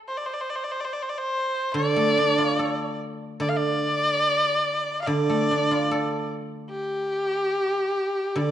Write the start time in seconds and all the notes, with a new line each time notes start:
0.08 C5
0.17 D5
0.26 C5
0.34 D5
0.41 C5
0.49 D5
0.56 C5
0.64 D5
0.72 C5
0.81 D5
0.85 C5
0.93 D5
1.03 C5
1.09 D5
1.18 C5
1.72 D3 D5
1.96 A3
2.17 D4
2.38 F4
2.59 A4
3.40 D3 D5
3.49 F5
3.57 D5
5.01 F5
5.07 D3 D5
5.30 A3
5.51 D4
5.71 F4
5.91 A4
6.70 G4
8.36 D3 D5